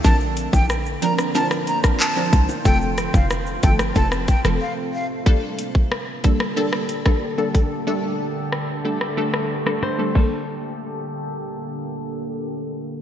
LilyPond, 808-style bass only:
\new Staff \with { instrumentName = "808-style bass" } { \clef bass \time 4/4 \key g \minor \tempo 4 = 92 bes,,8. bes,,8. r2 c,16 r16 | f,,8. f,,8. g,,8 f,,8. f,,16 r4 | r1 | r1 |
r1 | }